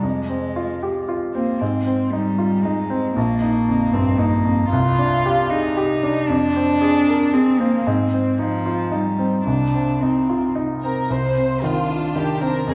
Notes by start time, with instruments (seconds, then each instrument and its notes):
0.02 grand piano F2, cello G#3
0.29 grand piano C4
0.56 grand piano F4
0.83 grand piano G4
1.09 grand piano F4
1.34 cello A#3, grand piano C4
1.60 grand piano G#2, cello C4
1.87 grand piano C4
2.10 cello G3, grand piano D#4
2.38 grand piano F4
2.63 cello G#3, grand piano D#4
2.90 grand piano C4
3.15 grand piano A#1, cello A#3
3.42 grand piano D#4
3.68 grand piano F2
3.93 grand piano G2, cello C4
4.18 cello A#3, grand piano D#4
4.45 grand piano F2
4.70 grand piano C2, cello F4
4.99 grand piano D4
5.26 grand piano G4
5.50 cello D#4, grand piano G#4
5.77 grand piano G4
6.03 grand piano D4
6.28 grand piano F2, cello D4
6.56 grand piano C4
6.81 grand piano G#4
7.09 grand piano A#4
7.34 cello C4, grand piano G#4
7.60 cello A#3, grand piano C4
7.85 grand piano G#2, cello C4
8.13 grand piano C4
8.38 cello F3, grand piano D#4
8.66 grand piano F4
8.92 cello G3, grand piano D#4
9.19 grand piano C4
9.44 grand piano C2, cello D4
9.74 grand piano C4
10.00 cello C4, grand piano D#4
10.29 grand piano F4
10.55 grand piano D#4
10.83 grand piano C4, violin section A#4
11.10 grand piano C2, violin section C5
11.38 grand piano C4
11.63 grand piano D#3, cello D4, violin section F4
11.89 grand piano F4
12.16 grand piano D#3, violin section G4
12.42 grand piano C4, violin section A#4
12.67 grand piano F2, cello C4, violin section G#4